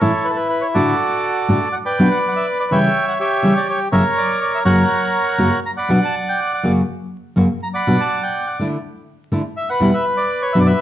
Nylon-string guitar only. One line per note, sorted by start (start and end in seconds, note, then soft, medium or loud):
0.01 0.10 A2 medium
0.01 0.11 E3 medium
0.01 0.11 A3 medium
0.01 0.11 C#4 medium
0.01 0.11 E4 medium
0.75 0.92 A2 medium
0.75 0.92 D3 medium
0.75 0.93 A3 medium
0.75 0.92 D4 medium
0.75 0.93 F#4 medium
1.49 1.57 A2 medium
1.49 1.58 D3 medium
1.49 1.57 A3 medium
1.49 1.58 D4 medium
1.49 1.58 F#4 medium
1.99 2.07 B2 medium
1.99 2.07 F#3 medium
1.99 2.07 B3 medium
1.99 2.08 D4 medium
1.99 2.08 F#4 medium
2.71 2.87 C#3 medium
2.71 2.87 E3 medium
2.71 2.88 G3 medium
2.71 2.88 C#4 medium
2.71 2.88 E4 medium
3.43 3.52 C#3 medium
3.43 3.52 E3 medium
3.43 3.52 G3 medium
3.43 3.52 C#4 medium
3.43 3.52 E4 medium
3.92 4.01 F#2 medium
3.92 4.01 C#3 medium
3.92 4.01 F#3 medium
3.92 4.01 A#3 medium
3.92 4.01 C#4 medium
3.92 4.02 F#4 medium
4.65 4.82 F#2 medium
4.65 4.82 C#3 medium
4.65 4.82 F#3 medium
4.65 4.83 A#3 medium
4.65 4.83 C#4 medium
4.65 4.83 F#4 medium
5.38 5.48 F#2 medium
5.38 5.48 C#3 medium
5.38 5.48 F#3 medium
5.38 5.48 A#3 medium
5.38 5.48 C#4 medium
5.38 5.48 F#4 medium
5.89 5.98 B2 medium
5.89 5.98 F#3 medium
5.89 5.98 B3 medium
5.89 5.98 D4 medium
5.89 5.99 F#4 medium
6.63 6.80 F#2 medium
6.63 6.80 C#3 medium
6.63 6.80 F#3 medium
6.63 6.81 A#3 medium
6.63 6.81 C#4 medium
6.63 6.81 F#4 medium
7.36 7.46 F#2 medium
7.36 7.46 C#3 medium
7.36 7.46 F#3 medium
7.36 7.46 A#3 medium
7.36 7.46 C#4 medium
7.36 7.46 F#4 medium
7.87 7.96 B2 medium
7.87 7.96 F#3 medium
7.87 7.96 B3 medium
7.87 7.96 D4 medium
7.87 7.96 F#4 medium
8.59 8.76 D3 medium
8.59 8.77 A3 medium
8.59 8.77 D4 medium
8.59 8.77 E4 medium
9.32 9.41 D3 medium
9.32 9.41 A3 medium
9.32 9.41 D4 medium
9.32 9.42 E4 medium
9.80 9.89 E2 medium
9.80 9.89 B2 medium
9.80 9.90 E3 medium
9.80 9.90 G3 medium
9.80 9.90 B3 medium
9.80 9.90 E4 medium
10.55 10.71 F#2 medium
10.55 10.71 B2 medium
10.55 10.71 F#3 medium
10.55 10.71 B3 medium
10.55 10.71 D4 medium
10.55 10.71 F#4 medium